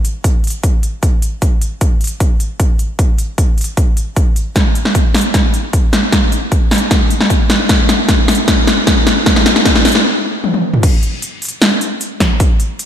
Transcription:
0.05 closed hi-hat
0.24 kick, closed hi-hat
0.44 closed hi-hat
0.47 closed hi-hat
0.50 closed hi-hat
0.63 kick, closed hi-hat
0.83 closed hi-hat
1.03 kick, closed hi-hat
1.22 closed hi-hat
1.42 kick, closed hi-hat
1.61 closed hi-hat
1.81 kick, closed hi-hat
2.01 closed hi-hat
2.04 closed hi-hat
2.07 closed hi-hat
2.20 kick, closed hi-hat
2.40 closed hi-hat
2.60 kick, closed hi-hat
2.79 closed hi-hat
2.99 kick, closed hi-hat
3.18 closed hi-hat
3.38 kick, closed hi-hat
3.58 closed hi-hat
3.61 closed hi-hat
3.64 closed hi-hat
3.77 kick, closed hi-hat
3.97 closed hi-hat
4.16 kick, closed hi-hat
4.36 closed hi-hat
4.56 kick, snare, closed hi-hat
4.75 closed hi-hat
4.85 snare
4.95 kick, closed hi-hat
5.15 snare, closed hi-hat, open hi-hat
5.21 closed hi-hat
5.34 kick, snare, closed hi-hat
5.54 closed hi-hat
5.73 kick, closed hi-hat
5.93 snare, closed hi-hat
6.12 kick, snare, closed hi-hat
6.32 closed hi-hat
6.52 kick, closed hi-hat
6.71 snare, closed hi-hat, open hi-hat
6.78 closed hi-hat
6.91 kick, snare, closed hi-hat
7.10 closed hi-hat
7.21 snare
7.30 kick, closed hi-hat
7.50 snare, closed hi-hat
7.69 kick, snare, closed hi-hat
7.89 snare, closed hi-hat
8.09 kick, snare, closed hi-hat
8.28 snare, closed hi-hat, open hi-hat
8.35 closed hi-hat
8.48 kick, snare, closed hi-hat
8.67 snare, closed hi-hat
8.87 kick, snare, closed hi-hat
9.07 snare, closed hi-hat
9.26 kick, snare, closed hi-hat
9.36 snare
9.46 snare, closed hi-hat
9.56 snare
9.65 kick, snare, closed hi-hat
9.76 snare
9.85 snare, closed hi-hat, open hi-hat
9.92 snare, closed hi-hat
10.44 high tom
10.54 high tom
10.74 mid tom
10.83 kick, closed hi-hat, crash
11.03 closed hi-hat
11.22 closed hi-hat
11.42 closed hi-hat, open hi-hat
11.48 closed hi-hat
11.62 snare, closed hi-hat
11.81 closed hi-hat
12.01 closed hi-hat
12.20 kick, snare, closed hi-hat
12.40 kick, closed hi-hat
12.60 closed hi-hat
12.79 closed hi-hat

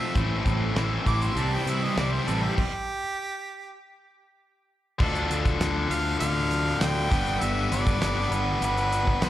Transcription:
Already playing: F2 C3 F3 A3 C4 F4 E5
0.15 A1 A2 E3 A3 C4 E4, kick, closed hi-hat
0.46 A1, kick, closed hi-hat
0.76 A1 A2 E3 A3 C4 E4, snare, closed hi-hat
1.05 A1 A2 E3 A3 C4 E4 D6, kick, closed hi-hat
1.22 C6, closed hi-hat
1.35 C2 C3 E3 G3 C4 E4 A5, closed hi-hat
1.54 G5
1.66 C3 E5, closed hi-hat
1.84 D#5
1.96 C2 C3 E3 G3 C4 E4 D5, snare, closed hi-hat
2.13 C5
2.27 A1 C3 E3 G3 C4 E4 A4, closed hi-hat
2.43 G4
2.57 G4, kick, crash
4.99 D2 D3 D4 F4 A4, kick, crash
5.15 closed hi-hat
5.30 D2, closed hi-hat
5.45 kick, closed hi-hat
5.60 D2, snare, closed hi-hat
5.90 D2 F5, closed hi-hat
6.20 D2 F5, closed hi-hat
6.51 closed hi-hat
6.80 D2 G5, snare, closed hi-hat
7.10 G1 G3 B3 D4 B4, kick, closed hi-hat
7.27 closed hi-hat
7.41 G1 E5, closed hi-hat
7.71 G1 D5, closed hi-hat
7.87 kick, closed hi-hat
8.02 G1, snare, closed hi-hat
8.31 G1 B4, closed hi-hat
8.61 G1 B4, closed hi-hat
8.77 closed hi-hat
8.92 closed hi-hat
9.07 kick
9.21 B1 G3 B3 D4 B4 C5, snare, closed hi-hat

